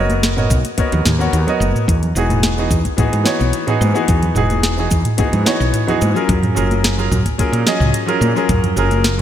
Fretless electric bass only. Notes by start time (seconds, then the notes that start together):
Already playing: F#1
0.50 B1
0.93 D#2
1.06 D#2
1.33 D#2
1.60 F#1
1.88 E2
2.15 E1
2.70 E2
3.13 G#2
3.41 B1
3.81 G#2
4.09 E2
4.35 E1
4.91 E2
5.33 G#2
5.60 B1
6.02 G#2
6.29 F#2
6.57 F#1
7.11 F#2
7.53 A#2
7.80 C#2
8.21 A#2
8.49 F#2
8.77 F#1